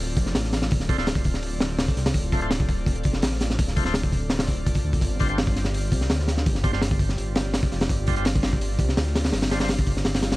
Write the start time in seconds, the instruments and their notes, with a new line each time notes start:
Already playing: detuned saw bass D1, analog synth pad C4 F4 A4 D5
0.17 detuned saw bass F1, kick, open hi-hat
0.26 snare
0.35 detuned saw bass A1, snare, open hi-hat
0.44 snare
0.53 analog synth pad C4 F4 A4 D5, snare, open hi-hat
0.62 snare
0.71 detuned saw bass D1, analog synth pad C4 F4 A4 D5, kick, open hi-hat
0.80 snare
0.89 tonewheel organ A3 D4 F4 C5, kick, open hi-hat
0.98 tonewheel organ A3 D4 F4 C5, snare
1.07 snare, open hi-hat
1.15 kick
1.24 analog synth pad C4 F4 A4 D5, kick, open hi-hat
1.34 snare
1.43 detuned saw bass D1, open hi-hat
1.60 snare, open hi-hat
1.79 snare, open hi-hat
1.88 kick
1.97 detuned saw bass C2, snare, open hi-hat
2.06 snare, open hi-hat
2.14 detuned saw bass D1, analog synth pad C4 F4 A4 D5, kick, open hi-hat
2.32 tonewheel organ A3 D4 F4 C5, kick, open hi-hat
2.41 tonewheel organ A3 D4 F4 C5, closed hi-hat
2.50 snare, open hi-hat
2.60 kick
2.68 analog synth pad C4 F4 A4 D5, kick, open hi-hat
2.86 kick, open hi-hat
2.96 closed hi-hat
3.04 detuned saw bass F1, kick, open hi-hat
3.13 snare
3.22 detuned saw bass A1, snare, open hi-hat
3.31 snare
3.40 analog synth pad C4 F4 A4 D5, snare, open hi-hat
3.50 snare
3.59 detuned saw bass D1, analog synth pad C4 F4 A4 D5, kick, open hi-hat
3.68 snare
3.76 tonewheel organ A3 D4 F4 C5, kick, open hi-hat
3.85 tonewheel organ A3 D4 F4 C5, snare
3.94 snare, open hi-hat
4.03 kick
4.12 analog synth pad C4 F4 A4 D5, kick, open hi-hat
4.30 detuned saw bass D1, snare, open hi-hat
4.39 snare, open hi-hat
4.47 kick, open hi-hat
4.66 kick, open hi-hat
4.75 kick, open hi-hat
4.84 detuned saw bass D2
4.93 kick, open hi-hat
5.01 detuned saw bass G1, analog synth pad C4 F4 G4 D5, kick, open hi-hat
5.20 tonewheel organ G3 D4 F4 C5, kick, open hi-hat
5.29 tonewheel organ G3 D4 F4 C5, closed hi-hat
5.38 snare, open hi-hat
5.47 kick
5.56 analog synth pad C4 F4 G4 D5, snare, open hi-hat
5.65 snare
5.74 open hi-hat
5.92 detuned saw bass C2, kick, open hi-hat
6.01 snare
6.10 detuned saw bass D2, snare, open hi-hat
6.20 snare
6.28 analog synth pad C4 F4 G4 D5, snare, open hi-hat
6.37 snare
6.46 detuned saw bass G1, analog synth pad C4 F4 G4 D5, kick, open hi-hat
6.55 snare
6.64 tonewheel organ G3 D4 F4 C5, kick, open hi-hat
6.73 tonewheel organ G3 D4 F4 C5, snare
6.82 snare, open hi-hat
6.91 kick
6.99 analog synth pad C4 F4 G4 D5, kick, open hi-hat
7.09 snare
7.18 detuned saw bass G1, open hi-hat
7.36 snare, open hi-hat
7.54 snare, open hi-hat
7.63 kick
7.72 detuned saw bass F1, snare, open hi-hat
7.81 snare, open hi-hat
7.89 detuned saw bass G1, analog synth pad C4 F4 G4 D5, kick, open hi-hat
8.06 tonewheel organ G3 D4 F4 C5, kick, open hi-hat
8.16 tonewheel organ G3 D4 F4 C5, closed hi-hat
8.25 snare, open hi-hat
8.36 kick
8.43 analog synth pad C4 F4 G4 D5, snare, open hi-hat
8.53 kick
8.61 open hi-hat
8.79 detuned saw bass C2, kick, open hi-hat
8.89 snare
8.97 detuned saw bass D2, snare, open hi-hat
9.07 snare
9.15 analog synth pad C4 F4 G4 D5, snare, open hi-hat
9.24 snare, open hi-hat
9.32 detuned saw bass G1, analog synth pad C4 F4 G4 D5, snare, open hi-hat
9.42 snare, open hi-hat
9.51 tonewheel organ G3 D4 F4 C5, snare, open hi-hat
9.60 tonewheel organ G3 D4 F4 C5, snare, open hi-hat
9.69 snare, open hi-hat
9.79 kick
9.87 analog synth pad C4 F4 G4 D5, kick, open hi-hat
9.97 snare
10.05 detuned saw bass G1, snare, open hi-hat
10.14 snare, open hi-hat
10.23 analog synth pad C4 F4 G4 D5, snare, open hi-hat
10.32 snare, open hi-hat